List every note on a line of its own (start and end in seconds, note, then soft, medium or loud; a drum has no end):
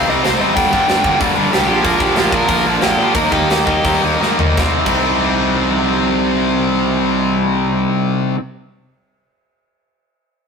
0.09 0.19 C2 loud
0.09 0.25 C3 medium
0.09 0.25 G3 medium
0.09 0.26 C4 medium
0.09 0.26 D#4 medium
0.09 0.24 D#5 medium
0.23 0.35 C2 medium
0.23 0.41 C3 loud
0.23 0.40 G3 medium
0.23 0.40 C4 loud
0.23 0.40 D#4 loud
0.23 0.39 C5 medium
0.23 snare loud
0.23 open hi-hat soft
0.40 0.56 G#1 medium
0.40 0.56 C3 medium
0.40 0.55 G3 medium
0.40 0.55 C4 medium
0.40 0.55 D#4 medium
0.40 0.55 D#5 medium
0.55 0.67 G1 medium
0.55 0.73 G2 loud
0.55 0.73 D3 medium
0.55 0.73 G3 loud
0.55 0.74 A#3 loud
0.55 0.73 D4 loud
0.55 1.18 G5 loud
0.55 kick loud
0.55 open hi-hat medium
0.73 0.83 G1 medium
0.73 0.86 G2 medium
0.73 0.87 D3 medium
0.73 0.87 G3 medium
0.73 0.89 A#3 medium
0.73 0.89 D4 medium
0.73 kick medium
0.88 0.99 G1 medium
0.88 1.05 G2 medium
0.88 1.04 D3 loud
0.88 1.03 G3 loud
0.88 1.03 A#3 loud
0.88 1.03 D4 loud
0.88 snare loud
0.88 open hi-hat medium
1.04 1.15 G1 medium
1.04 1.19 G2 medium
1.04 1.19 D3 medium
1.04 1.20 G3 medium
1.04 1.21 A#3 medium
1.04 1.20 D4 medium
1.04 kick medium
1.20 1.31 G1 loud
1.20 1.37 G2 loud
1.20 1.37 D3 medium
1.20 1.36 G3 medium
1.20 1.36 A#3 loud
1.20 1.36 D4 loud
1.20 kick loud
1.20 open hi-hat medium
1.37 1.48 G1 medium
1.37 1.50 G2 medium
1.37 1.50 D3 medium
1.37 1.51 G3 medium
1.37 1.52 A#3 medium
1.37 1.51 D4 medium
1.52 1.71 C2 medium
1.52 1.67 G2 medium
1.52 1.67 D3 medium
1.52 1.67 G3 loud
1.52 1.68 A#3 loud
1.52 1.67 D4 medium
1.52 1.84 G4 loud
1.52 snare loud
1.52 open hi-hat medium
1.68 1.80 A#1 medium
1.68 1.83 A#2 medium
1.68 1.83 D3 loud
1.68 1.83 F3 medium
1.68 1.83 A#3 loud
1.68 1.82 D4 loud
1.83 1.95 A#1 medium
1.83 1.99 A#2 medium
1.83 1.99 D3 medium
1.83 2.00 F3 loud
1.83 2.00 A#3 medium
1.83 2.00 D4 medium
1.83 2.02 A#4 medium
1.83 kick loud
1.83 open hi-hat medium
2.00 2.11 A#1 medium
2.00 2.16 A#2 medium
2.00 2.15 D3 medium
2.00 2.15 F3 medium
2.00 2.15 A#3 medium
2.00 2.14 D4 medium
2.00 2.33 G4 medium
2.00 kick medium
2.15 2.27 A#1 medium
2.15 2.31 A#2 medium
2.15 2.33 D3 medium
2.15 2.32 F3 medium
2.15 2.34 A#3 medium
2.15 2.33 D4 loud
2.15 snare loud
2.15 open hi-hat medium
2.32 2.43 A#1 medium
2.32 2.49 A#2 medium
2.32 2.49 D3 medium
2.32 2.48 F3 medium
2.32 2.48 A#3 medium
2.32 2.48 D4 medium
2.32 2.65 A#4 loud
2.32 kick medium
2.48 2.60 A#1 loud
2.48 2.64 A#2 medium
2.48 2.64 D3 medium
2.48 2.64 F3 loud
2.48 2.64 A#3 loud
2.48 2.65 D4 loud
2.48 kick loud
2.48 open hi-hat medium
2.65 2.77 A#1 medium
2.65 2.81 A#2 medium
2.65 2.80 D3 medium
2.65 2.80 F3 medium
2.65 2.80 A#3 medium
2.65 2.79 D4 medium
2.81 2.94 A#1 medium
2.81 2.97 A#2 medium
2.81 2.97 D3 medium
2.81 2.97 F3 medium
2.81 2.97 A#3 loud
2.81 2.98 D4 loud
2.81 3.15 G4 medium
2.81 snare loud
2.81 open hi-hat soft
2.98 3.14 A#2 medium
2.98 3.09 A#2 medium
2.98 3.14 D3 medium
2.98 3.14 F3 medium
2.98 3.14 A#3 loud
2.98 3.14 D4 medium
3.14 3.26 D#2 medium
3.14 3.32 D#3 medium
3.14 3.31 G3 loud
3.14 3.31 A#3 loud
3.14 3.30 D#4 medium
3.14 3.32 A#4 medium
3.14 kick loud
3.14 open hi-hat soft
3.31 3.43 D#2 medium
3.31 3.48 D#3 medium
3.31 3.48 G3 medium
3.31 3.48 A#3 medium
3.31 3.49 D#4 medium
3.31 3.65 G4 medium
3.31 kick medium
3.49 3.61 D#2 medium
3.49 3.66 D#3 medium
3.49 3.66 G3 medium
3.49 3.66 A#3 loud
3.49 3.64 D#4 medium
3.49 snare loud
3.49 open hi-hat soft
3.66 3.78 D#2 medium
3.66 3.82 D#3 medium
3.66 3.83 G3 medium
3.66 3.84 A#3 medium
3.66 3.83 D#4 medium
3.66 4.01 G4 loud
3.66 kick medium
3.83 3.96 D#2 loud
3.83 4.03 D#3 medium
3.83 4.02 G3 loud
3.83 4.02 A#3 loud
3.83 4.01 D#4 loud
3.83 kick loud
3.83 open hi-hat medium
4.03 4.15 D#2 medium
4.03 4.19 D#3 medium
4.03 4.20 G3 medium
4.03 4.21 A#3 medium
4.03 4.21 D#4 medium
4.21 4.33 G#2 medium
4.21 4.39 D#3 medium
4.21 4.39 G3 medium
4.21 4.39 A#3 loud
4.21 4.38 D#4 loud
4.21 snare medium
4.39 4.51 D2 medium
4.39 4.56 D#3 medium
4.39 4.57 G3 medium
4.39 4.57 A#3 medium
4.39 4.57 D#4 medium
4.39 floor tom loud
4.56 4.68 C2 medium
4.56 4.85 C3 medium
4.56 4.86 G3 medium
4.56 4.88 C4 loud
4.56 4.89 D#4 loud
4.56 kick loud
4.56 snare medium
4.85 7.84 C2 medium
4.85 8.35 C3 medium
4.85 8.36 G3 medium
4.85 8.38 C4 medium
4.85 kick loud
4.85 crash medium
4.89 8.39 D#4 loud